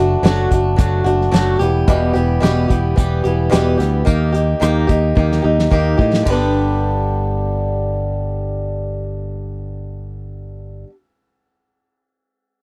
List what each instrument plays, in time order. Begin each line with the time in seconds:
Already playing: picked electric bass F#1, steel-string acoustic guitar F#4
0.00 steel-string acoustic guitar A3 D4
0.23 picked electric bass F#1, steel-string acoustic guitar F#3 A3 D4 F#4, snare, closed hi-hat
0.51 picked electric bass F#1, steel-string acoustic guitar A3 D4 F#4, kick, closed hi-hat
0.76 picked electric bass F#1, steel-string acoustic guitar F#3 A3 D4 F#4, kick, closed hi-hat
1.04 picked electric bass F#1, steel-string acoustic guitar A3 D4 F#4, closed hi-hat
1.21 snare
1.32 picked electric bass F#1, steel-string acoustic guitar F#3 A3 D4 F#4, snare, closed hi-hat
1.59 picked electric bass E1, steel-string acoustic guitar E3 G3 B3 G4, closed hi-hat
1.88 picked electric bass E1, steel-string acoustic guitar E2 B2 E3 G3 B3 G4, kick, closed hi-hat
2.13 picked electric bass E1, steel-string acoustic guitar E3 G3 B3 G4, closed hi-hat
2.40 picked electric bass E1, steel-string acoustic guitar E2 B2 E3 G3 B3 G4, snare, closed hi-hat
2.68 picked electric bass E1, steel-string acoustic guitar E3 G3 B3 G4, kick, closed hi-hat
2.96 picked electric bass E1, steel-string acoustic guitar E3 G3 B3 G4, kick, closed hi-hat
3.24 picked electric bass E1, steel-string acoustic guitar E3 G3 B3 G4, closed hi-hat
3.50 picked electric bass E1, steel-string acoustic guitar E2 B2 E3 G3 B3 G4, snare, closed hi-hat
3.78 picked electric bass D2, steel-string acoustic guitar E3 G3 B3 G4, snare, closed hi-hat
4.05 picked electric bass D#2, steel-string acoustic guitar D#3 A#3 D#4 G4, kick, closed hi-hat
4.32 steel-string acoustic guitar A#3 D#4 G4, closed hi-hat
4.60 picked electric bass D#2, steel-string acoustic guitar D#3 A#3 D#4 G4, cross-stick, closed hi-hat
4.87 picked electric bass D#2, steel-string acoustic guitar A#3 D#4 G4, kick, closed hi-hat
5.15 picked electric bass D#2, steel-string acoustic guitar D#3 A#3 D#4 G4, kick
5.32 snare
5.42 picked electric bass D#2, steel-string acoustic guitar A#3 D#4 G4
5.59 snare
5.71 picked electric bass D#2, steel-string acoustic guitar D#3 A#3 D#4 G4, kick
5.97 picked electric bass A2, steel-string acoustic guitar A#3 D#4 G4, kick
6.14 snare
6.22 steel-string acoustic guitar G2 D3
6.26 picked electric bass G1, steel-string acoustic guitar G3, kick, ride
6.30 steel-string acoustic guitar B3 D4 G4